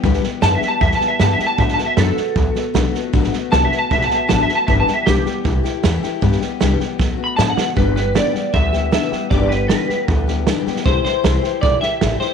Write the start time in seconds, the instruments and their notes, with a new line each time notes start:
0.03 upright bass D2, steel-string acoustic guitar G2 D3 E3 G3 B3 G4, kick, snare
0.13 snare
0.23 steel-string acoustic guitar E3 G3 B3 G4, snare
0.41 upright bass F#2, steel-string acoustic guitar G2 D3 E3 G3 B3 G4, clean electric guitar A5, snare, hi-hat pedal
0.55 clean electric guitar E5
0.61 steel-string acoustic guitar E3 G3 B3 G4, muted upright bass stroke, snare
0.68 clean electric guitar A5
0.80 upright bass E2, steel-string acoustic guitar E3 G3 B3 G4, clean electric guitar E5, kick, snare
0.91 clean electric guitar A5, snare
1.00 steel-string acoustic guitar E3 G3 B3 G4, muted upright bass stroke, snare
1.08 clean electric guitar E5
1.19 steel-string acoustic guitar G2 D3 E3 G3 B3 G4, upright bass G2, clean electric guitar A5, snare, hi-hat pedal
1.33 clean electric guitar E5
1.39 steel-string acoustic guitar E3 G3 B3 G4, muted upright bass stroke, snare
1.47 clean electric guitar A5
1.58 upright bass A2, steel-string acoustic guitar D3 F#3 A3 B3 F#4, clean electric guitar E5, kick, snare
1.68 snare
1.74 steel-string acoustic guitar F#4, clean electric guitar A5
1.78 steel-string acoustic guitar A3 B3, muted upright bass stroke, snare
1.86 clean electric guitar E5
1.97 upright bass F#2, steel-string acoustic guitar D3 F#3 A3 B3 F#4, clean electric guitar A4, snare, hi-hat pedal
2.16 steel-string acoustic guitar A3 B3 F#4, muted upright bass stroke, snare
2.35 upright bass D2, steel-string acoustic guitar F#3 A3 B3 F#4, kick, snare
2.55 steel-string acoustic guitar A3 B3 F#4, snare
2.74 upright bass B1, steel-string acoustic guitar D3 F#3 A3 B3 F#4, snare, hi-hat pedal
2.93 steel-string acoustic guitar A3 B3 F#4, muted upright bass stroke, snare
3.13 upright bass A1, steel-string acoustic guitar D3 F#3 A3 B3 F#4, kick, snare
3.23 snare
3.32 steel-string acoustic guitar A3 B3 F#4, muted upright bass stroke, snare
3.51 upright bass C2, steel-string acoustic guitar D3 F#3 A3 B3 F#4, clean electric guitar A5, snare, hi-hat pedal
3.65 clean electric guitar E5
3.70 steel-string acoustic guitar A3 B3 F#4, muted upright bass stroke, snare
3.79 clean electric guitar A5
3.90 upright bass B1, steel-string acoustic guitar F#3 A3 B3 F#4, clean electric guitar E5, kick, snare
4.01 clean electric guitar A5, snare
4.09 steel-string acoustic guitar A3 B3 F#4, muted upright bass stroke, snare
4.16 clean electric guitar E5
4.28 upright bass A1, steel-string acoustic guitar D3 F#3 A3 B3 F#4, clean electric guitar A5, snare, hi-hat pedal
4.43 clean electric guitar E5
4.48 steel-string acoustic guitar A3 B3 F#4, snare
4.55 clean electric guitar A5
4.67 upright bass G1, steel-string acoustic guitar G2 D3 E3 G3 B3 G4, clean electric guitar E5, kick, snare
4.80 clean electric guitar A5
4.87 steel-string acoustic guitar E3 G3 B3 G4, muted upright bass stroke, snare
4.94 clean electric guitar E5
5.06 upright bass B1, steel-string acoustic guitar G2 D3 E3 G3 B3 G4, clean electric guitar G4, snare, hi-hat pedal
5.25 steel-string acoustic guitar E3 G3 B3 G4, muted upright bass stroke, snare
5.44 upright bass C2, steel-string acoustic guitar E3 A3 E4 G4, kick, snare
5.63 steel-string acoustic guitar A3 E4 G4, muted upright bass stroke, snare
5.83 upright bass E2, steel-string acoustic guitar C3 E3 A3 E4 G4, snare, hi-hat pedal
6.03 steel-string acoustic guitar A3 E4 G4, snare
6.21 steel-string acoustic guitar G2 D3 E3 G3 B3 G4, upright bass G2, kick, snare
6.32 snare
6.40 steel-string acoustic guitar E3 G3 B3 G4, muted upright bass stroke, snare
6.60 upright bass C2, steel-string acoustic guitar G2 D3 E3 G3 B3 G4, snare, hi-hat pedal
6.79 steel-string acoustic guitar E3 G3 B3 G4, snare
6.98 upright bass D2, steel-string acoustic guitar F#3 A3 B3 F#4, kick, snare
7.17 steel-string acoustic guitar A3 B3 F#4
7.24 clean electric guitar B5
7.36 upright bass A2, steel-string acoustic guitar D3 F#3 A3 B3 F#4, clean electric guitar A5, snare, hi-hat pedal
7.50 clean electric guitar F#5
7.56 steel-string acoustic guitar A3 B3 F#4, muted upright bass stroke, snare
7.75 upright bass G1, steel-string acoustic guitar G2 D3 E3 G3 B3 G4, clean electric guitar B4, kick, snare
7.95 steel-string acoustic guitar E3 G3 B3 G4, clean electric guitar B4, snare
8.14 steel-string acoustic guitar G2 D3 E3 G3 B3 G4, clean electric guitar D5, snare, hi-hat pedal
8.33 steel-string acoustic guitar E3 G3 B3 G4, muted upright bass stroke, snare
8.52 upright bass D2, steel-string acoustic guitar E3 G3 B3 G4, clean electric guitar E5, kick, snare
8.72 steel-string acoustic guitar E3 G3 B3 G4, snare
8.91 steel-string acoustic guitar G2 D3 E3 G3 B3 G4, clean electric guitar E5, snare, hi-hat pedal
9.11 steel-string acoustic guitar E3 G3 B3 G4, muted upright bass stroke, snare
9.30 upright bass G1, steel-string acoustic guitar G2 D3 E3 G3 B3 G4, clean electric guitar D5, kick, snare
9.49 steel-string acoustic guitar E3 G3 B3 G4, clean electric guitar B4, snare
9.68 steel-string acoustic guitar G2 D3 E3 G3 B3 G4, clean electric guitar B4, snare, hi-hat pedal
9.88 steel-string acoustic guitar E3 G3 B3 G4, muted upright bass stroke, snare
10.08 upright bass D2, steel-string acoustic guitar E3 G3 B3 G4, clean electric guitar A4, kick, snare
10.27 steel-string acoustic guitar E3 G3 B3 G4, snare
10.47 steel-string acoustic guitar G2 D3 E3 G3 B3 G4, snare, hi-hat pedal
10.66 steel-string acoustic guitar E3 G3 B3 G4, muted upright bass stroke, snare
10.76 snare
10.85 upright bass C2, steel-string acoustic guitar C3 E3 A3 E4 G4, clean electric guitar C5, kick, snare
11.04 steel-string acoustic guitar A3 E4 G4, clean electric guitar C5, muted upright bass stroke, snare
11.23 upright bass C2, steel-string acoustic guitar C3 E3 A3 E4 G4, snare, hi-hat pedal
11.42 steel-string acoustic guitar A3 E4 G4, snare
11.61 upright bass B1, steel-string acoustic guitar E3 A3 E4 G4, clean electric guitar D5, kick, snare
11.81 steel-string acoustic guitar A3 E4 G4, clean electric guitar E5, muted upright bass stroke, snare
12.01 upright bass A1, steel-string acoustic guitar C3 E3 A3 E4 G4, snare, hi-hat pedal
12.20 steel-string acoustic guitar A3 E4 G4, clean electric guitar C5, muted upright bass stroke, snare